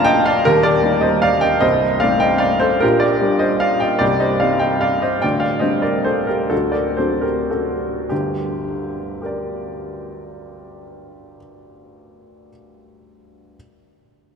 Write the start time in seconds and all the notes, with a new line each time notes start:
Already playing: D1 D2 F3 A#3 F4 D5 F5 A5 A#5
0.04 D#5 G5
0.26 D5 F5
0.45 D#1 D#2 G4 A#4
0.63 A#4 D5
0.83 G3 A#3 D#4
1.01 C5 D#5
1.22 D5 F5
1.41 D#5 G5
1.60 C1 C2 C5 D#5
2.00 A3 C4 D#4 D5 F5
2.20 D#5 G5
2.38 D5 F5
2.60 A4 C5
2.80 A#1 A#2 G4 A#4
3.00 A#4 D5
3.21 G3 D4 G4
3.39 C5 D#5
3.60 D5 F5
3.80 D#5 G5
3.99 C1 C2 G4 D5
4.20 C5 D#5
4.40 G3 C4 D#4 D5 F5
4.59 D#5 G5
4.81 D5 F5
5.02 C5 D#5
5.22 D1 D2 D5 G5
5.40 D5 F5
5.59 G3 C4 D4 C5 D#5
5.82 A#4 D5
6.04 A4 C5
6.27 G4 A#4
6.50 D1 D2 F#4 A4
6.72 A#4 D5
6.97 F#3 C4 D4 A4 C5
7.21 G4 A#4
7.50 F#4 A4
8.09 G1 D2 G4
9.22 G4 A#4
9.26 D5